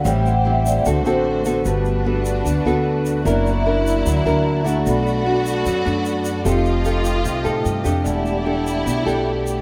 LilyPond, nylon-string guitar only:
\new Staff \with { instrumentName = "Nylon-string guitar" } { \time 4/4 \key g \major \tempo 4 = 150 << { <g c' e'>8 r8 <g c' e'>4 <c' fis' a'>8 <c' fis' a'>4 <b fis' a'>8~ | <b fis' a'>4 <b fis' a'>4 r8 <b fis' a'>4. | <d' e' ais'>8 r8 <d' e' ais'>4. <d' e' ais'>4 <a d' fis'>8~ | <a d' fis'>4 <a d' fis'>4 r8 <a d' fis'>4. |
<ees' g' a'>8 r8 <ees' g' a'>4. <ees' g' a'>4 <d' g' a'>8~ | <d' g' a'>4 <d' g' a'>4. <d' g' a'>4. | } \\ { a,2 d2 | g2 d2 | fis2 fis2 | b,2 fis2 |
f2 c2 | e2 b,2 | } >> }